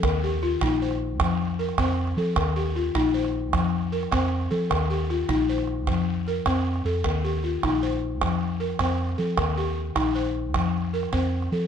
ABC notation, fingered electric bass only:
X:1
M:12/8
L:1/8
Q:3/8=103
K:Fmix
V:1 name="Fingered electric bass" clef=bass
E,,3 B,,,3 F,,3 F,,2 F, | E,,3 B,,,3 F,,3 F,,2 F, | E,,3 B,,,3 F,,3 F,,2 F,, | E,,3 B,,,3 F,,3 F,,2 F, |
E,,3 B,,,3 F,,3 F,,2 F, |]